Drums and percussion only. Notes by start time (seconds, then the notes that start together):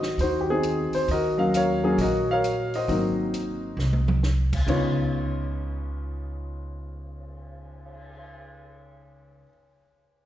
0.03 snare
0.18 kick, open hi-hat
0.63 closed hi-hat
0.93 open hi-hat
1.08 kick, open hi-hat
1.54 closed hi-hat
1.98 kick, open hi-hat
2.44 closed hi-hat
2.74 open hi-hat
2.88 kick, open hi-hat
3.34 closed hi-hat
3.79 snare
3.93 high tom
4.08 mid tom
4.23 snare
4.53 kick, crash
4.68 kick, crash
4.97 cymbal swell